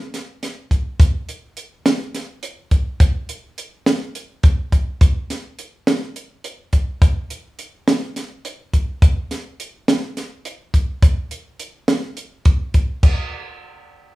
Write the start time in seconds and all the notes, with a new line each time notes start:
0.14 snare, closed hi-hat
0.43 snare, closed hi-hat
0.71 kick, closed hi-hat
1.00 kick, closed hi-hat
1.29 closed hi-hat
1.57 closed hi-hat
1.86 snare, closed hi-hat
2.15 snare, closed hi-hat
2.43 closed hi-hat
2.71 kick, closed hi-hat
3.00 kick, closed hi-hat
3.29 closed hi-hat
3.58 closed hi-hat
3.86 snare, closed hi-hat
4.15 closed hi-hat
4.43 kick, closed hi-hat
4.72 kick, closed hi-hat
5.01 kick, closed hi-hat
5.30 snare, closed hi-hat
5.59 closed hi-hat
5.87 snare, closed hi-hat
6.16 closed hi-hat
6.44 closed hi-hat
6.73 kick, closed hi-hat
7.02 kick, closed hi-hat
7.30 closed hi-hat
7.59 closed hi-hat
7.88 snare, closed hi-hat
8.16 snare, closed hi-hat
8.45 closed hi-hat
8.74 kick, closed hi-hat
9.02 kick, closed hi-hat
9.31 snare, closed hi-hat
9.60 closed hi-hat
9.88 snare, closed hi-hat
10.17 snare, closed hi-hat
10.45 closed hi-hat
10.74 kick, closed hi-hat
11.02 kick, closed hi-hat
11.31 closed hi-hat
11.59 closed hi-hat
11.88 snare, closed hi-hat
12.17 closed hi-hat
12.45 kick, closed hi-hat
12.74 kick, closed hi-hat
13.03 kick, crash